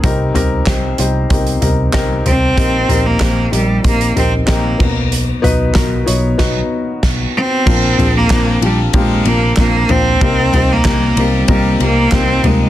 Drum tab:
CC |----------------|--------------x-|--------x---x---|x---------------|
RD |----------------|----------------|----------------|--x-x-x-x-x-x-x-|
HH |x-x-x-x-xxx-x-x-|x-x-x-x-xxx-x---|x-x-x-x---------|----------------|
CP |----x-------x---|----x-------x---|----x-----------|----x-------x---|
SD |----o-------o---|----o-------o---|----o---o---o---|----o-------o---|
FT |--o-------o---o-|--o-------o---o-|--o-------------|--o-----------o-|
BD |o---o---o---o---|o---o---o---o-o-|----o---o---o---|o---o---o---o---|

CC |----------------|
RD |x-x-x-x-x-x-x-x-|
HH |----------------|
CP |----x-------x---|
SD |----o-------o---|
FT |--o-----------o-|
BD |o---o---o---o---|